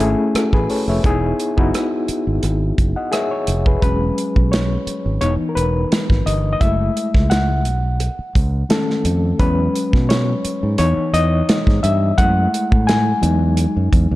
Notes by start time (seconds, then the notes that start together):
0.00 G#1 A3 C#4 E4 G#4, closed hi-hat
0.35 F#4 A4, muted fingered electric bass stroke, cross-stick, closed hi-hat
0.53 A1 G#4 B4, kick, cross-stick
0.70 A4 C#5, open hi-hat
0.88 F1 C#5 E5
1.03 E1 B3 D#4 E4 G#4, kick, closed hi-hat
1.39 closed hi-hat
1.57 F#1 B3 D#4 E4 F#4, kick
1.74 cross-stick, closed hi-hat
2.08 muted fingered electric bass stroke, closed hi-hat
2.27 G#1
2.43 G#1, closed hi-hat
2.78 F#1, kick, closed hi-hat
2.96 D#5 F#5
3.12 G#4 C#5 E5, cross-stick, closed hi-hat
3.31 C#5
3.47 F1, closed hi-hat
3.66 G#4 B4, kick
3.82 E1 F#3 G#3 C#4 B4, kick, closed hi-hat
4.18 closed hi-hat
4.36 B1, kick
4.52 C#5, snare, closed hi-hat
4.87 muted fingered electric bass stroke, closed hi-hat
5.06 G#1
5.21 E1 E3 B3 D#4 C#5, closed hi-hat
5.49 A#4
5.55 E1 B4, closed hi-hat
5.92 snare, closed hi-hat
6.10 G#1, kick, snare
6.26 G1 D#5, closed hi-hat
6.53 D#5
6.60 F#1 G#3 A3 E4 E5, kick, closed hi-hat
6.97 closed hi-hat
7.15 C#2, kick, snare
7.30 F#5, snare, closed hi-hat
7.65 B1, closed hi-hat
8.00 closed hi-hat
8.19 muted fingered electric bass stroke
8.35 C#2, kick, closed hi-hat
8.69 D#3 A3 C#4 A4, snare, closed hi-hat
8.90 snare
9.05 F2, closed hi-hat
9.39 E2 F#3 G#3 C#4 B4, kick, closed hi-hat
9.75 closed hi-hat
9.93 B2, kick, snare
10.09 C#5, snare, closed hi-hat
10.45 muted fingered electric bass stroke, closed hi-hat
10.63 G#2
10.78 E2 E3 B3 D#4 C#5, closed hi-hat
10.98 muted fingered electric bass stroke
11.13 E2 D#5, closed hi-hat
11.49 snare, closed hi-hat
11.67 G#2, kick, snare
11.83 G2 E5, closed hi-hat
12.18 F#2 G#3 A3 E4 F#5, kick, closed hi-hat
12.54 closed hi-hat
12.72 A2, kick
12.87 G#5, snare, closed hi-hat
13.21 E2 F#3 G#3 D#4, closed hi-hat
13.57 closed hi-hat
13.77 F#2
13.93 E2, kick, closed hi-hat
14.11 D#2